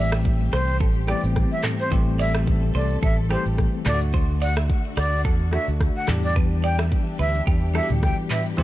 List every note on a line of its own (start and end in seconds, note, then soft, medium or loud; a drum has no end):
0.00 0.49 A1 loud
0.00 0.43 E3 medium
0.00 0.43 G3 medium
0.00 0.44 A3 medium
0.00 6.04 A3 medium
0.00 0.47 C4 medium
0.00 3.82 C4 medium
0.00 0.44 G4 loud
0.00 1.89 G4 medium
0.00 0.11 E5 medium
0.12 0.22 E5 medium
0.12 cross-stick loud
0.12 shaker medium
0.25 kick loud
0.25 shaker medium
0.53 0.81 C2 medium
0.53 0.65 C5 medium
0.53 0.77 C5 medium
0.53 cross-stick loud
0.53 shaker medium
0.68 shaker medium
0.80 1.12 A1 loud
0.80 0.92 A4 medium
0.80 kick loud
0.80 shaker medium
1.07 1.63 E3 medium
1.07 1.63 G3 medium
1.07 1.63 A3 medium
1.07 1.16 B3 medium
1.07 1.20 G4 medium
1.07 1.64 G4 medium
1.07 1.22 D5 medium
1.07 cross-stick medium
1.07 shaker medium
1.15 1.67 C4 medium
1.24 1.44 A1 medium
1.24 shaker medium
1.36 kick loud
1.36 cross-stick medium
1.36 shaker medium
1.52 1.62 E5 medium
1.63 1.76 A4 medium
1.63 cross-stick loud
1.63 clap loud
1.63 mid tom medium
1.63 shaker medium
1.79 1.90 C5 medium
1.79 shaker medium
1.91 2.71 A1 loud
1.91 2.65 E3 medium
1.91 2.66 G3 medium
1.91 2.66 A3 medium
1.91 2.66 C4 medium
1.91 2.67 G4 medium
1.91 3.84 A4 medium
1.91 2.03 C5 medium
1.91 kick loud
1.91 shaker medium
2.19 2.31 D5 medium
2.19 2.33 E5 medium
2.19 open hi-hat soft
2.19 shaker soft
2.35 2.44 E5 medium
2.35 cross-stick loud
2.35 shaker medium
2.47 kick medium
2.47 shaker medium
2.75 2.95 C2 loud
2.75 2.87 C5 medium
2.75 2.99 D5 medium
2.75 shaker medium
2.90 shaker medium
3.03 3.34 A1 medium
3.03 3.15 A4 medium
3.03 3.16 E5 medium
3.03 kick loud
3.03 shaker medium
3.29 3.85 E3 medium
3.29 3.85 G3 medium
3.29 3.84 A3 medium
3.29 3.86 C4 medium
3.29 3.42 G4 medium
3.29 3.86 G4 medium
3.29 3.44 C5 medium
3.29 cross-stick medium
3.29 shaker medium
3.46 3.66 A1 medium
3.46 shaker medium
3.58 kick loud
3.58 cross-stick medium
3.58 shaker medium
3.85 4.68 D2 loud
3.85 6.06 D3 medium
3.85 4.75 A3 medium
3.85 4.76 D4 medium
3.85 3.94 F4 medium
3.85 6.06 F#4 medium
3.85 3.98 A4 medium
3.85 3.99 D5 medium
3.85 cross-stick loud
3.85 clap loud
3.85 mid tom loud
3.85 shaker medium
3.94 4.79 F#4 loud
4.01 shaker medium
4.14 4.26 C5 medium
4.14 kick loud
4.14 shaker medium
4.42 4.53 D5 medium
4.42 4.55 F#5 medium
4.42 open hi-hat medium
4.42 shaker soft
4.57 4.67 E5 medium
4.57 cross-stick loud
4.57 shaker medium
4.70 kick loud
4.70 shaker medium
4.97 5.25 D2 loud
4.97 5.09 D5 medium
4.97 5.21 D5 medium
4.97 cross-stick loud
4.97 shaker medium
5.12 shaker medium
5.25 5.57 E2 medium
5.25 5.37 A4 medium
5.25 kick loud
5.25 shaker medium
5.52 6.07 A3 medium
5.52 6.08 D4 medium
5.52 5.64 F#4 medium
5.52 6.08 F#4 medium
5.52 5.66 E5 medium
5.52 cross-stick medium
5.52 shaker medium
5.68 5.88 D2 medium
5.68 shaker medium
5.81 kick loud
5.81 cross-stick loud
5.81 shaker medium
5.96 6.07 F#5 medium
6.07 6.90 E2 loud
6.07 6.97 E3 medium
6.07 8.56 E3 medium
6.07 6.97 G3 medium
6.07 6.98 B3 medium
6.07 8.56 D4 medium
6.07 6.98 D4 medium
6.07 6.20 G4 medium
6.07 8.63 G4 medium
6.07 6.98 G4 loud
6.07 cross-stick loud
6.07 clap loud
6.07 mid tom loud
6.07 shaker medium
6.23 6.34 D5 medium
6.23 shaker medium
6.36 6.48 B4 medium
6.36 kick loud
6.36 shaker medium
6.64 6.76 D5 medium
6.64 6.77 G5 medium
6.64 shaker soft
6.79 6.89 E5 medium
6.79 cross-stick loud
6.79 shaker medium
6.92 kick loud
6.92 shaker medium
7.19 7.40 D2 loud
7.19 7.31 B4 medium
7.19 7.43 E5 medium
7.19 shaker medium
7.34 shaker medium
7.47 7.79 E2 loud
7.47 7.59 G4 medium
7.47 kick loud
7.47 shaker medium
7.74 8.29 E3 medium
7.74 8.30 G3 medium
7.74 8.30 B3 medium
7.74 8.30 D4 medium
7.74 7.83 F#4 medium
7.74 7.87 A4 medium
7.74 7.88 E5 medium
7.74 cross-stick medium
7.74 shaker soft
7.83 8.34 G4 medium
7.90 8.11 D2 medium
7.90 mid tom medium
7.90 shaker medium
8.03 8.16 G5 medium
8.03 kick loud
8.03 cross-stick loud
8.03 shaker medium
8.30 8.42 B4 medium
8.30 8.44 E5 medium
8.30 clap loud
8.30 mid tom medium
8.30 shaker medium
8.46 shaker medium
8.57 8.63 A1 loud
8.57 8.63 E3 medium
8.57 8.63 G3 medium
8.57 8.63 A3 medium
8.57 8.63 C4 medium
8.57 8.63 G4 loud
8.57 8.63 C5 medium
8.57 kick loud
8.57 shaker medium